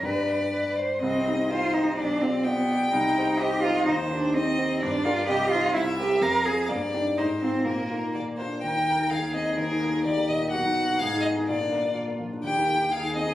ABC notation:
X:1
M:2/4
L:1/16
Q:1/4=126
K:Cm
V:1 name="Violin"
d6 z2 | e4 c4 | d4 g4- | g4 e4 |
c4 e4 | [K:Eb] d4 e4 | =e4 f4 | d4 c4 |
B4 d2 c2 | g4 f2 e2 | B4 d2 e2 | ^f4 =f2 e2 |
d4 z4 | g4 f2 e2 |]
V:2 name="Cello"
=B4 B2 c2 | C4 F2 E2 | D2 C2 =B,4 | E4 G2 F2 |
E2 D2 C4 | [K:Eb] D2 F2 G2 F2 | =E2 G2 B2 A2 | B,2 D2 E2 C2 |
B,6 z2 | B4 A4- | A4 G4 | ^F4 A4 |
F6 z2 | G4 A4 |]
V:3 name="Grand piano"
[G,,DG=B]8 | C,,2 [EGc]2 [EGc]2 [EGc]2 | =B,,,2 [FGd]2 [FGd]2 [FGd]2 | C,,2 [EGc]2 [EGc]2 [EGc]2 |
E,,2 [EGc]2 [EGc]2 [EGc]2 | [K:Eb] G,,2 [DGB]2 C,,2 [EGc]2 | C,,2 [CGB]2 F,,2 [CFA]2 | G,,2 [B,EG]2 A,,2 [CEF]2 |
B,,2 [B,EF]2 B,,2 [B,DF]2 | E,, E B, E E,, E C E | E,, E B, E E,, B, B,, E | =B,,, ^D =B, D A,, E _C E |
B,, D B, D B,, B, F, D | E,, E B, E E,, E C E |]